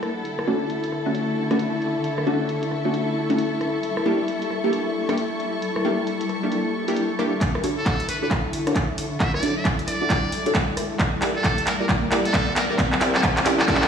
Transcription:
Already playing: G3 E4 A4 D5 F#5
0.03 cross-stick, closed hi-hat
0.25 D3 E4 E5, closed hi-hat
0.39 cross-stick
0.47 A3 C#4 D4 F#4
0.70 closed hi-hat
0.84 closed hi-hat
0.92 cross-stick
0.99 C#6
1.06 A3 C#4 D4 F#4
1.15 closed hi-hat
1.51 A3 C#4 D4 F#4, cross-stick, closed hi-hat
1.59 closed hi-hat
1.82 closed hi-hat
2.04 closed hi-hat
2.18 cross-stick
2.27 A3 C#4 D4 F#4
2.49 closed hi-hat
2.63 closed hi-hat
2.71 cross-stick
2.85 A3 C#4 D4 F#4
2.94 closed hi-hat
3.30 A3 C#4 D4 F#4, closed hi-hat
3.38 closed hi-hat
3.61 cross-stick, closed hi-hat
3.83 G3, closed hi-hat
3.97 cross-stick
4.06 A#3 D4 E4 G4
4.28 closed hi-hat
4.42 closed hi-hat
4.51 cross-stick
4.64 A#3 D4 E4 G4
4.73 closed hi-hat
5.09 A#3 D4 E4 G4, cross-stick, closed hi-hat
5.17 closed hi-hat
5.40 closed hi-hat
5.62 closed hi-hat
5.76 cross-stick
5.85 A#3 D4 E4 G4
6.07 closed hi-hat
6.21 closed hi-hat
6.29 cross-stick, closed hi-hat
6.43 A#3 D4 E4 G4
6.52 closed hi-hat
6.88 A#3 D4 E4 G4, closed hi-hat
6.96 closed hi-hat
7.19 A#3 D4 E4 G4, cross-stick, closed hi-hat
7.41 D3 E4 E5, kick, clap, closed hi-hat, riser
7.55 cross-stick
7.64 D4 F#4 A4 C#5, open hi-hat
7.78 A4
7.86 kick, clap, closed hi-hat
8.00 closed hi-hat
8.08 B4, cross-stick, open hi-hat
8.22 D4 F#4 A4 B4 C#5
8.31 kick, clap, closed hi-hat
8.53 open hi-hat
8.67 D4 F#4 A4 C#5, cross-stick, closed hi-hat
8.76 kick, clap, closed hi-hat
8.98 open hi-hat
9.20 E5, kick, clap, closed hi-hat
9.34 D5, cross-stick
9.43 D4 F#4 A4 C#5, open hi-hat
9.57 E5
9.65 kick, clap, closed hi-hat
9.79 closed hi-hat
9.88 D5, cross-stick, open hi-hat
10.01 D4 F#4 A4 D5
10.10 kick, clap, closed hi-hat
10.32 open hi-hat
10.46 D4 F#4 A4 C#5, closed hi-hat
10.55 kick, clap, closed hi-hat
10.77 cross-stick, open hi-hat
10.99 G3, kick, clap, closed hi-hat
11.20 E4 G4 A#4 D5, clap, open hi-hat
11.36 A4
11.44 kick, clap, closed hi-hat
11.58 closed hi-hat
11.67 A#4, clap, open hi-hat
11.80 E4 G4 A#4 D5
11.89 kick, clap, closed hi-hat
12.11 E4 G4 A#4 D5, clap, open hi-hat
12.25 A4, closed hi-hat
12.34 kick, clap, closed hi-hat
12.56 A#4, clap, open hi-hat
12.70 E4 G4 A#4 D5
12.79 kick, clap, closed hi-hat
12.93 clap
13.01 E4 G4 A#4 D5, clap, open hi-hat
13.15 A4, clap
13.23 kick, clap, closed hi-hat
13.37 clap, closed hi-hat
13.46 E4 G4 A#4 D5, clap, open hi-hat
13.59 A4, clap
13.68 E4 G4 A4 A#4 D5, kick, clap, closed hi-hat
13.75 clap
13.82 clap

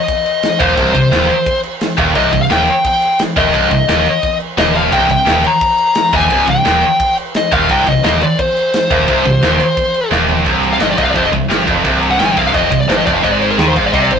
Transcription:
Already playing: D#5
0.08 kick, crash
0.26 crash
0.43 snare, crash
0.59 D#1 D#2 C5, kick, crash
0.77 C1 C2, kick, crash
0.93 C1 C2 C5, kick, crash
1.11 D#1 D#2, snare, crash
1.30 crash
1.46 kick, crash
1.63 crash
1.81 snare, crash
1.97 D#1 D#2, kick, crash
2.15 C1 C2 D#5, kick, crash
2.32 C1 C2, kick, crash
2.42 F5
2.50 D#1 D#2 G5, snare, crash
2.67 crash
2.84 G5, kick, crash
3.02 crash
3.19 snare, crash
3.37 D#1 D#2 D#5, kick, crash
3.54 C1 C2, kick, crash
3.71 C1 C2, kick, crash
3.88 D#1 D#2, snare, crash
4.06 crash
4.23 kick, crash
4.40 crash
4.58 D#1 D#2 D#5, snare, crash
4.75 F5, crash
4.92 C1 C2 G5, kick, crash
5.09 C1 C2 G5, kick, crash
5.26 D#1 D#2, snare, crash
5.44 A#5, crash
5.61 kick, crash
5.78 crash
5.95 snare, crash
6.12 D#1 D#2 G#5, kick, crash
6.30 C1 C2, kick, crash
6.47 C1 C2 G5, kick, crash
6.65 D#1 D#2, snare, crash
6.82 crash
7.00 kick, crash
7.17 crash
7.34 D#5, snare, crash
7.52 D#1 D#2 F5, kick, crash
7.69 C1 C2 G5, kick, crash
7.87 C1 C2 D#5, kick, crash
8.04 D#1 D#2 D#5, snare, crash
8.22 D5, crash
8.39 C5, kick, crash
8.57 crash
8.73 snare, crash
8.90 D#1 D#2, kick, crash
9.08 C1 C2, kick, crash
9.25 C1 C2, kick, crash
9.42 D#1 D#2, snare, crash
9.60 crash
9.77 kick, crash
9.94 crash
10.11 D#1 D#2, snare
10.29 floor tom
10.45 C1 C2, kick, crash
10.63 crash
10.73 F5
10.80 G1 G2 D#5, snare, crash
10.91 D5
10.97 C1 C2 D#5, kick, crash
11.04 F5
11.10 D5
11.15 F1 F2 C5, kick, crash
11.23 D#5
11.32 C1 C2, kick, crash
11.49 G1 G2, snare, crash
11.66 F1 F2, kick, crash
11.84 C1 C2, kick, crash
12.02 crash
12.11 F#5
12.19 G1 G2 G5, snare, crash
12.26 G#5
12.32 G5
12.37 C1 C2 F5, kick, crash
12.47 F5
12.53 F1 F2 D#5, kick, crash
12.70 C1 C2, kick, crash
12.81 D5
12.89 G1 G2 C5, snare, crash
12.98 D#5
13.06 F1 F2 D5, kick, crash
13.13 F5
13.22 G#1 G#2 D#5, kick, crash
13.32 D5
13.41 C5, crash
13.51 A#4
13.58 D#2 D#3 G#4, snare, crash
13.68 C5
13.76 G#1 G#2 F5, kick, crash
13.86 D5
13.93 C2 C3 D#5, kick, crash
14.03 D5
14.11 G#1 G#2 C5, kick, crash

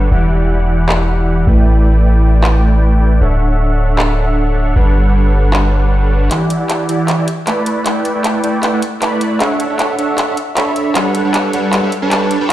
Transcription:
0.12 E1 E3 E4 G4 D5 F#5
0.89 clap
1.47 A1 A3 E4 B4 D5 G5
2.44 clap
3.21 D1 D4 A4 C#5 E5 F#5
3.99 clap
4.76 G1 G3 D4 A4 B4 C#5 F#5
5.53 clap
6.31 E3 E4 G4 D5 F#5, clap, closed hi-hat
6.50 closed hi-hat
6.60 E3 E4 G4 D5 F#5
6.70 clap, closed hi-hat
6.89 E3 E4 G4 D5 F#5, closed hi-hat
7.08 clap, closed hi-hat
7.18 E3 E4 G4 D5 E5
7.28 closed hi-hat
7.47 A3 E4 B4 D5 B5, clap, closed hi-hat
7.66 closed hi-hat
7.86 A3 E4 B4 D5 G5, clap, closed hi-hat
8.05 closed hi-hat
8.15 A3 E4 B4 D5 G5
8.24 clap, closed hi-hat
8.44 A3 E4 B4 D5 G5, closed hi-hat
8.63 clap, closed hi-hat
8.73 A3 E4 B4 D5 F#5
8.82 closed hi-hat
9.02 A3 E4 B4 D5 B5, clap, closed hi-hat
9.21 closed hi-hat
9.40 D4 A4 C#5 E5 F#5, clap, closed hi-hat
9.60 closed hi-hat
9.70 D4 A4 C#5 E5 F#5
9.79 clap, closed hi-hat
9.98 D4 A4 C#5 E5 F#5, closed hi-hat
10.18 clap, closed hi-hat
10.28 D4 A4 C#5 E5 F#5
10.37 closed hi-hat
10.57 D4 A4 C#5 E5 B5, clap, closed hi-hat
10.76 closed hi-hat
10.95 G3 D4 A4 B4 C#5 F#5, clap, closed hi-hat
11.15 closed hi-hat
11.25 G3 D4 A4 B4 C#5 F#5
11.34 clap, closed hi-hat
11.53 G3 D4 A4 B4 C#5 F#5, closed hi-hat
11.73 clap, closed hi-hat
11.83 G3 D4 A4 B4 C#5 E5
11.92 closed hi-hat
12.02 G3 D4 A4 B4 C#5 A5
12.11 clap, closed hi-hat
12.31 closed hi-hat
12.41 G3 D4 A4 B4 C#5 G5

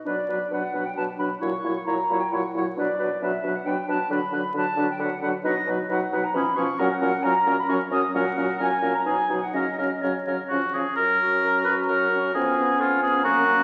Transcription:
0.05 B2 F#3 D4 B4 D5
0.28 B2 F#3 D4 B4
0.51 B2 F#3 D4 B4 F#5
0.74 B2 F#3 D4 B4
0.86 G5
0.96 B2 F#3 D4 B4 A5
1.19 B2 F#3 D4 B4 B5
1.41 A#2 F#3 E4 C#5 C#6
1.63 A#2 F#3 E4 C#5
1.86 A#2 F#3 E4 C#5 A#5
2.09 A#2 F#3 E4 C#5
2.20 G5
2.32 A#2 F#3 E4 C#5 F#5
2.54 A#2 F#3 E4 C#5 F#5
2.76 B2 F#3 D4 B4 D5
2.99 B2 F#3 D4 B4
3.21 B2 F#3 D4 B4 E5
3.43 B2 F#3 D4 B4
3.55 F#5
3.65 B2 F#3 D4 B4 G5
3.88 B2 F#3 D4 B4 A5
4.10 D3 F#3 D4 B4 B5
4.32 D3 F#3 D4 B4
4.54 D3 F#3 D4 B4 A5
4.77 D3 F#3 D4 B4
4.90 G5
4.99 D3 F#3 D4 B4 F#5
5.22 D3 F#3 D4 B4 F#5
5.43 B2 F#3 D#4 B4 D#5
5.67 B2 F#3 D#4 B4
5.89 B2 F#3 D#4 B4 F#5
6.12 B2 F#3 D#4 B4
6.24 A#5
6.34 B2 F3 C#4 G#4 B5
6.56 B2 F3 C#4 G#4 C#6
6.78 A#2 F#3 C#4 A#4 F#5
7.01 A#2 F#3 C#4 A#4
7.23 A#2 F#3 C#4 A#4 A#5
7.46 A#2 F#3 C#4 A#4
7.59 B5
7.68 F#2 F#3 C#4 A#4 C#6
7.91 F#2 F#3 C#4 A#4 D#6
8.14 A#2 F#3 C#4 A#4 F#5
8.36 A#2 F#3 C#4 A#4
8.58 A#2 F#3 C#4 A#4 G#5
8.82 A#2 F#3 C#4 A#4
8.94 A#5
9.06 B2 F#3 D#4 G#4 G#5
9.29 B2 F#3 D#4 G#4
9.42 F#5
9.52 C#3 F#3 C#4 A#4 D#5
9.78 C#3 F#3 C#4 A#4
10.01 C#3 F#3 C#4 A#4 C#5
10.27 C#3 F#3 C#4 A#4
10.49 C#3 F3 C#4 F#4
10.74 C#3 F3 C#4 G#4
10.96 F#2 A#4
11.22 C#4 F#4
11.44 F#2 A#5
11.65 C#4 F#4 B4
11.87 F#2 A#4 F#5
12.11 C#4 F#4
12.33 F2 B3 C#4 G#4 G#5
12.57 B3 C#4
12.79 F2 F4
13.02 B3 C#4 G#4
13.22 F#2 A#3 C#4 F#4 A#5
13.46 A#3 C#4

